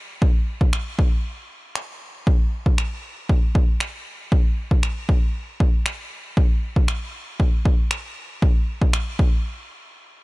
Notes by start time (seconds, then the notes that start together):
0.22 kick
0.61 kick
0.73 finger snap
0.99 kick
1.75 finger snap
2.27 kick
2.66 kick
2.78 finger snap
3.29 kick
3.55 kick
3.80 finger snap
4.32 kick
4.71 kick
4.83 finger snap
5.09 kick
5.60 kick
5.86 finger snap
6.37 kick
6.76 kick
6.88 finger snap
7.40 kick
7.65 kick
7.91 finger snap
8.42 kick
8.82 kick
8.93 finger snap
9.19 kick